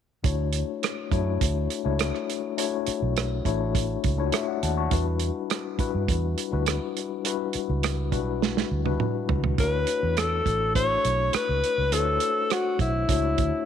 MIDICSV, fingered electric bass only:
0, 0, Header, 1, 3, 480
1, 0, Start_track
1, 0, Key_signature, 2, "major"
1, 0, Tempo, 583658
1, 200, Time_signature, 4, 2, 24, 8
1, 11228, End_track
2, 0, Start_track
2, 0, Title_t, "Fingered electric bass"
2, 0, Program_c, 0, 33
2, 201, Note_on_c, 0, 38, 96
2, 509, Note_off_c, 0, 38, 0
2, 919, Note_on_c, 0, 42, 80
2, 1126, Note_off_c, 0, 42, 0
2, 1163, Note_on_c, 0, 38, 83
2, 1368, Note_off_c, 0, 38, 0
2, 1526, Note_on_c, 0, 37, 72
2, 1730, Note_off_c, 0, 37, 0
2, 2486, Note_on_c, 0, 35, 78
2, 2793, Note_off_c, 0, 35, 0
2, 2842, Note_on_c, 0, 33, 74
2, 3253, Note_off_c, 0, 33, 0
2, 3329, Note_on_c, 0, 37, 75
2, 3532, Note_off_c, 0, 37, 0
2, 3807, Note_on_c, 0, 39, 78
2, 4011, Note_off_c, 0, 39, 0
2, 4045, Note_on_c, 0, 40, 91
2, 4352, Note_off_c, 0, 40, 0
2, 4890, Note_on_c, 0, 43, 77
2, 4990, Note_off_c, 0, 43, 0
2, 5007, Note_on_c, 0, 40, 91
2, 5210, Note_off_c, 0, 40, 0
2, 5369, Note_on_c, 0, 38, 85
2, 5572, Note_off_c, 0, 38, 0
2, 6328, Note_on_c, 0, 37, 84
2, 6681, Note_off_c, 0, 37, 0
2, 6681, Note_on_c, 0, 35, 73
2, 7092, Note_off_c, 0, 35, 0
2, 7166, Note_on_c, 0, 38, 77
2, 7370, Note_off_c, 0, 38, 0
2, 7649, Note_on_c, 0, 37, 86
2, 7851, Note_off_c, 0, 37, 0
2, 7883, Note_on_c, 0, 38, 96
2, 8088, Note_off_c, 0, 38, 0
2, 8248, Note_on_c, 0, 40, 81
2, 8553, Note_off_c, 0, 40, 0
2, 8604, Note_on_c, 0, 33, 71
2, 9013, Note_off_c, 0, 33, 0
2, 9087, Note_on_c, 0, 35, 81
2, 9290, Note_off_c, 0, 35, 0
2, 9449, Note_on_c, 0, 37, 83
2, 9549, Note_off_c, 0, 37, 0
2, 9688, Note_on_c, 0, 37, 65
2, 9807, Note_off_c, 0, 37, 0
2, 9807, Note_on_c, 0, 38, 96
2, 10010, Note_off_c, 0, 38, 0
2, 10523, Note_on_c, 0, 35, 79
2, 10728, Note_off_c, 0, 35, 0
2, 10766, Note_on_c, 0, 37, 92
2, 10969, Note_off_c, 0, 37, 0
2, 11010, Note_on_c, 0, 38, 76
2, 11109, Note_off_c, 0, 38, 0
2, 11228, End_track
3, 0, Start_track
3, 0, Title_t, "Muted fingered electric bass strokes"
3, 2365, Note_on_c, 9, 29, 38
3, 2447, Note_off_c, 9, 29, 0
3, 4763, Note_on_c, 9, 29, 43
3, 4845, Note_off_c, 9, 29, 0
3, 6209, Note_on_c, 9, 29, 37
3, 6291, Note_off_c, 9, 29, 0
3, 11228, End_track
0, 0, End_of_file